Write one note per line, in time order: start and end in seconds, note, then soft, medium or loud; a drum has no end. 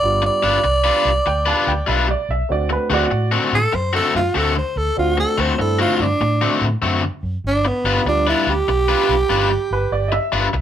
0.00 0.28 G1 medium
0.00 0.39 G3 medium
0.00 0.39 B3 soft
0.00 0.40 D4 soft
0.00 0.40 F4 medium
0.00 0.23 D5 medium
0.22 2.06 D5 medium
0.22 muted overdriven electric guitar stroke soft
0.43 0.56 G1 medium
0.43 0.57 G3 medium
0.43 0.57 D4 medium
0.43 0.57 F4 medium
0.43 0.57 B4 medium
0.64 0.89 C2 medium
0.64 muted overdriven electric guitar stroke soft
0.84 1.09 G3 medium
0.84 1.08 D4 medium
0.84 1.08 F4 medium
0.84 1.08 B4 medium
1.05 1.18 C2 medium
1.26 1.51 D2 medium
1.26 1.47 G5 medium
1.26 muted overdriven electric guitar stroke soft
1.46 1.70 G3 medium
1.46 1.70 D4 medium
1.46 1.70 F4 medium
1.46 1.70 B4 medium
1.46 1.67 A5 medium
1.67 1.80 D2 medium
1.67 1.88 G5 medium
1.87 2.13 B1 medium
1.87 2.08 G3 medium
1.87 2.07 D4 medium
1.87 2.07 F4 medium
1.87 2.07 B4 medium
1.87 2.08 E5 medium
2.08 2.29 D5 medium
2.08 muted overdriven electric guitar stroke soft
2.29 2.42 B1 medium
2.29 2.50 E5 medium
2.49 2.75 D2 medium
2.49 2.86 A3 medium
2.49 2.86 C4 soft
2.49 2.87 D4 medium
2.49 2.87 F#4 medium
2.49 2.71 D5 medium
2.70 2.91 B4 medium
2.70 muted overdriven electric guitar stroke soft
2.90 3.03 D2 medium
2.90 3.04 D3 medium
2.90 3.04 A3 medium
2.90 3.04 C4 medium
2.90 3.04 F#4 medium
2.90 3.42 F#4 medium
2.90 3.45 D5 medium
3.11 3.37 A2 medium
3.11 muted overdriven electric guitar stroke soft
3.32 3.56 D3 medium
3.32 3.55 A3 medium
3.32 3.55 C4 medium
3.32 3.55 F#4 medium
3.53 3.65 A2 medium
3.53 3.77 A4 medium
3.73 3.99 F#2 medium
3.73 3.94 C5 medium
3.73 muted overdriven electric guitar stroke soft
3.93 4.18 D3 medium
3.93 4.17 A3 medium
3.93 4.17 C4 medium
3.93 4.17 F#4 medium
3.93 4.15 A4 medium
4.15 4.27 F#2 medium
4.15 4.39 F4 medium
4.34 4.60 D2 medium
4.34 4.55 D3 medium
4.34 4.55 A3 medium
4.34 4.55 C4 medium
4.34 4.54 F#4 medium
4.34 4.56 A4 medium
4.56 4.79 C5 medium
4.56 muted overdriven electric guitar stroke soft
4.76 4.89 D2 medium
4.76 4.97 A4 medium
4.96 5.22 D2 medium
4.96 5.33 A3 medium
4.96 5.34 C4 medium
4.96 5.34 D4 medium
4.96 5.18 F4 medium
4.96 5.34 F#4 medium
5.18 5.42 A4 medium
5.18 muted overdriven electric guitar stroke soft
5.38 5.51 D2 medium
5.38 5.51 D3 medium
5.38 5.52 A3 medium
5.38 5.52 C4 medium
5.38 5.52 F#4 medium
5.38 5.59 C5 medium
5.57 5.84 G2 medium
5.57 5.95 A3 medium
5.57 5.95 C4 medium
5.57 5.96 D4 soft
5.57 5.96 E4 medium
5.57 5.80 A4 medium
5.57 muted overdriven electric guitar stroke soft
5.79 6.03 D3 medium
5.79 6.03 A3 medium
5.79 6.03 C4 medium
5.79 6.03 F4 medium
5.79 6.03 F#4 medium
5.99 6.12 G2 medium
5.99 6.61 D4 medium
6.21 6.46 A2 medium
6.21 muted overdriven electric guitar stroke soft
6.42 6.65 D3 medium
6.42 6.65 A3 medium
6.42 6.65 C4 medium
6.42 6.65 F#4 medium
6.61 6.74 A2 medium
6.82 7.07 F#2 medium
6.82 7.03 D3 medium
6.82 7.03 A3 medium
6.82 7.03 C4 medium
6.82 7.02 F#4 medium
7.03 muted overdriven electric guitar stroke soft
7.23 7.36 F#2 medium
7.44 7.69 G1 medium
7.44 7.69 D4 medium
7.65 8.06 B3 medium
7.65 muted overdriven electric guitar stroke soft
7.84 7.97 G1 medium
7.84 7.99 G3 medium
7.84 7.99 D4 medium
7.84 7.99 F4 medium
7.84 8.00 B4 medium
8.05 8.31 D2 medium
8.05 8.42 G3 medium
8.05 8.43 B3 medium
8.05 8.43 D4 medium
8.05 8.27 D4 medium
8.05 8.43 F4 medium
8.05 muted overdriven electric guitar stroke soft
8.27 8.51 G3 medium
8.27 8.51 D4 medium
8.27 8.51 E4 medium
8.27 8.51 F4 medium
8.27 8.50 B4 medium
8.47 8.60 D2 medium
8.47 10.30 G4 loud
8.68 8.93 B1 medium
8.68 muted overdriven electric guitar stroke soft
8.88 9.13 G3 medium
8.88 9.12 D4 medium
8.88 9.12 F4 medium
8.88 9.12 B4 medium
9.09 9.22 B1 medium
9.30 9.55 G1 medium
9.30 9.50 G3 medium
9.30 9.50 D4 medium
9.30 9.50 F4 medium
9.30 9.49 B4 medium
9.51 muted overdriven electric guitar stroke soft
9.71 9.83 G1 medium
9.71 9.92 B4 medium
9.92 10.17 G1 medium
9.92 10.12 D5 medium
10.08 10.16 D#5 medium
10.08 muted overdriven electric guitar stroke soft
10.12 10.61 E5 medium
10.32 10.46 G1 medium
10.32 10.46 G3 medium
10.32 10.46 D4 medium
10.32 10.46 F4 medium
10.32 10.47 B4 medium
10.53 10.61 C2 medium
10.53 muted overdriven electric guitar stroke soft